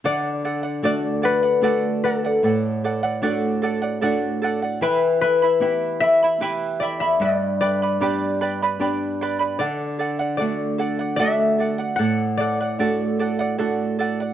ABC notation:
X:1
M:3/4
L:1/16
Q:1/4=75
K:Dmix
V:1 name="Charango"
[Adf]2 [Adf] [df] [Adf]2 [Adf] [df] [Adf]2 [Adf] [df] | [Adf]2 [Adf] [df] [Adf]2 [Adf] [df] [Adf]2 [Adf] [df] | [EBegb]2 [Eegb] [Eeb] [Eegb]2 [Eegb] [Eeb] [EBegb]2 [Eegb] [Eeb] | [Bdgb]2 [Bdgb] [Bdb] [GBdgb]2 [Bdgb] [Bdb] [Bdgb]2 [Bdgb] [Bdb] |
[Adf]2 [Adf] [df] [Adf]2 [Adf] [df] [Adf]2 [Adf] [df] | [Adf]2 [Adf] [df] [Adf]2 [Adf] [df] [Adf]2 [Adf] [df] |]
V:2 name="Harp"
d4 d2 B4 A2- | A8- A2 z2 | B2 B4 e4 d e | d2 d4 z6 |
d4 d4 e4 | f2 d8 z2 |]
V:3 name="Nylon-string guitar"
D,4 [A,DF]4 [A,DF]4 | A,,4 [A,DF]4 [A,DF]4 | E,4 [B,EG]4 [B,EG]4 | G,,4 [B,DG]4 [B,DG]4 |
D,4 [A,DF]4 [A,DF]4 | A,,4 [A,DF]4 [A,DF]4 |]